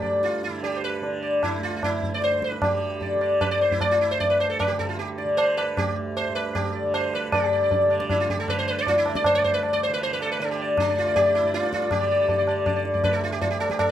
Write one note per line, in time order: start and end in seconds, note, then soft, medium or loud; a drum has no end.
0.00 1.56 D2 medium
0.00 2.09 G2 medium
0.00 0.49 D3 medium
0.00 0.23 G4 medium
0.00 0.21 D5 soft
0.00 tabla ge medium
0.23 0.44 F4 medium
0.23 tabla te medium
0.43 0.63 E4 medium
0.43 tabla te medium
0.49 1.01 D3 medium
0.63 0.77 G4 medium
0.63 tabla tin medium
0.76 0.82 C5 medium
0.84 1.21 B4 medium
1.01 2.61 D3 medium
1.01 tabla tin medium
1.22 1.41 D5 soft
1.43 1.63 E4 medium
1.43 tabla na medium
1.43 tabla ge medium
1.56 3.68 D2 medium
1.63 1.75 F4 medium
1.76 1.82 F4 medium
1.83 2.11 E4 loud
1.83 tabla na medium
1.83 tabla ge medium
2.03 tabla ge soft
2.09 4.20 G2 medium
2.14 2.23 D5 medium
2.22 2.43 C5 medium
2.22 tabla te medium
2.32 tabla te medium
2.42 2.64 B4 medium
2.42 tabla ke medium
2.52 tabla te medium
2.61 3.15 D3 medium
2.61 3.18 G4 medium
2.61 tabla na loud
2.61 tabla ge medium
3.01 3.20 D5 soft
3.01 tabla tin medium
3.01 tabla ge medium
3.15 4.71 D3 medium
3.21 3.40 D5 soft
3.21 tabla na medium
3.41 3.51 B4 medium
3.41 tabla na medium
3.41 tabla ge medium
3.51 3.61 D5 medium
3.61 3.71 C5 medium
3.61 tabla te medium
3.68 5.76 D2 medium
3.68 3.82 E4 medium
3.68 tabla ge medium
3.81 3.91 D5 medium
3.81 tabla na medium
3.81 tabla ge medium
3.91 4.01 F4 medium
4.01 4.11 E4 medium
4.11 4.20 C5 medium
4.20 6.28 G2 medium
4.20 4.29 D5 loud
4.20 tabla tin medium
4.20 tabla ge medium
4.30 4.40 B4 medium
4.40 4.49 C5 medium
4.40 tabla na medium
4.50 4.59 A4 medium
4.59 4.70 B4 medium
4.59 tabla na medium
4.59 tabla ge medium
4.68 5.24 D3 medium
4.68 4.79 G4 medium
4.79 4.88 A4 medium
4.79 tabla ge medium
4.89 4.99 F4 medium
4.99 5.08 G4 medium
4.99 tabla te medium
5.18 5.36 D5 soft
5.18 tabla te medium
5.24 6.82 D3 medium
5.37 5.57 C5 loud
5.37 tabla na medium
5.57 5.78 B4 medium
5.57 tabla na medium
5.76 8.87 D2 medium
5.76 5.96 G4 medium
5.76 tabla na medium
5.76 tabla ge medium
6.17 6.35 C5 medium
6.17 tabla na medium
6.29 7.33 G2 medium
6.35 6.55 B4 medium
6.35 tabla na medium
6.55 6.73 G4 medium
6.55 tabla na medium
6.55 tabla ge medium
6.75 6.93 D5 soft
6.82 7.85 D3 medium
6.94 7.14 C5 medium
6.94 tabla na medium
7.14 7.32 B4 medium
7.14 tabla na medium
7.32 9.37 G2 medium
7.32 7.87 G4 medium
7.32 7.41 D5 soft
7.32 tabla na loud
7.32 tabla ge loud
7.42 7.52 D5 soft
7.53 7.62 D5 soft
7.63 7.70 D5 soft
7.71 7.89 D5 soft
7.71 tabla tin medium
7.71 tabla ge medium
7.85 8.36 D3 medium
7.90 7.98 D5 soft
7.90 tabla na medium
7.99 8.18 D5 soft
7.99 tabla ke medium
8.10 8.20 E4 medium
8.10 tabla na medium
8.10 tabla ge medium
8.20 8.30 F4 medium
8.29 8.39 G4 medium
8.29 tabla ge medium
8.36 9.89 D3 medium
8.36 8.49 A4 medium
8.48 8.58 B4 loud
8.48 tabla na medium
8.48 tabla ge medium
8.59 8.67 C5 medium
8.68 8.78 B4 loud
8.78 8.88 D5 medium
8.86 10.91 D2 medium
8.86 8.97 F4 loud
8.86 tabla tin medium
8.86 tabla ge medium
8.98 9.17 E4 medium
9.06 9.15 D5 soft
9.06 tabla na medium
9.15 9.26 D5 medium
9.15 tabla ke medium
9.24 9.34 C5 loud
9.24 tabla na medium
9.24 tabla ge medium
9.35 11.42 G2 medium
9.35 9.44 D5 loud
9.44 9.53 C5 medium
9.44 tabla ge medium
9.54 9.63 B4 medium
9.63 9.72 D5 soft
9.63 tabla na medium
9.73 9.83 D5 loud
9.83 9.93 C5 loud
9.89 10.40 D3 medium
9.93 10.03 B4 medium
10.01 10.12 C5 loud
10.01 tabla tin medium
10.13 10.21 B4 medium
10.21 10.30 A4 medium
10.21 tabla na medium
10.32 10.41 B4 medium
10.40 11.92 D3 medium
10.40 10.51 A4 loud
10.40 tabla tin medium
10.51 10.59 G4 medium
10.61 10.78 D5 soft
10.77 10.99 D4 loud
10.77 tabla na medium
10.77 tabla ge medium
10.89 12.91 D2 medium
10.89 11.06 D5 soft
10.99 11.15 F4 medium
11.07 11.25 D5 soft
11.16 11.35 G4 loud
11.16 tabla tin medium
11.16 tabla ge medium
11.26 11.43 D5 soft
11.35 11.54 E4 medium
11.35 tabla na medium
11.42 13.41 G2 medium
11.42 11.62 D5 soft
11.54 11.72 F4 loud
11.54 tabla te medium
11.63 11.81 D5 soft
11.63 tabla te medium
11.73 11.91 F4 medium
11.73 tabla ke medium
11.82 11.99 D5 soft
11.82 tabla te medium
11.91 12.42 D3 medium
11.91 12.44 G4 medium
11.91 tabla na loud
11.91 tabla ge loud
12.01 12.10 D5 soft
12.11 12.19 D5 soft
12.20 12.28 D5 soft
12.29 12.37 D5 soft
12.29 tabla tin medium
12.29 tabla ge medium
12.38 13.91 D3 medium
12.38 12.47 D5 soft
12.47 12.65 D5 soft
12.47 tabla na medium
12.66 12.75 D5 soft
12.66 tabla na medium
12.66 tabla ge medium
12.76 12.93 D5 soft
12.85 tabla te medium
12.91 13.91 D2 medium
12.91 13.04 D5 soft
12.91 tabla ge medium
13.04 13.14 B4 loud
13.04 tabla na medium
13.04 tabla ge medium
13.13 13.23 A4 medium
13.24 13.32 F4 medium
13.32 13.41 G4 medium
13.41 13.91 G2 medium
13.41 13.50 F4 medium
13.41 tabla tin medium
13.41 tabla ge medium
13.51 13.60 G4 medium
13.60 13.70 A4 medium
13.60 tabla na medium
13.70 13.79 G4 medium
13.70 tabla ke medium
13.79 13.89 A4 loud
13.79 tabla na medium
13.79 tabla ge medium